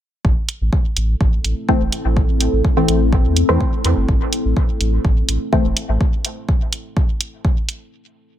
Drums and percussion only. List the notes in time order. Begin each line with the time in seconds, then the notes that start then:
0.25 kick
0.49 closed hi-hat
0.73 kick
0.97 closed hi-hat
1.21 kick
1.45 closed hi-hat
1.69 kick
1.92 closed hi-hat
2.17 kick
2.40 closed hi-hat
2.65 kick
2.88 closed hi-hat
3.13 kick
3.36 closed hi-hat
3.61 kick
3.85 closed hi-hat
4.09 kick
4.33 closed hi-hat
4.57 kick
4.81 closed hi-hat
5.05 kick
5.29 closed hi-hat
5.53 kick
5.77 closed hi-hat
6.01 kick
6.25 closed hi-hat
6.49 kick
6.73 closed hi-hat
6.97 kick
7.21 closed hi-hat
7.45 kick
7.69 closed hi-hat